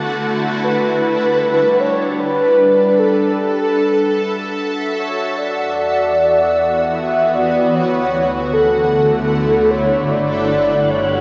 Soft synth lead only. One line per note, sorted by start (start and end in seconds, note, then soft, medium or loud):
0.00 0.25 A4 loud
0.64 1.82 B4 loud
1.80 2.21 C#5 loud
2.20 3.01 B4 loud
2.99 4.58 A4 medium
4.99 5.39 C#5 medium
5.38 6.97 D5 loud
6.95 7.36 E5 loud
7.35 7.76 D5 medium
7.75 8.55 C#5 loud
8.53 9.72 A4 medium
9.71 10.12 C#5 medium
10.11 10.91 D5 loud
10.90 11.21 C#5 medium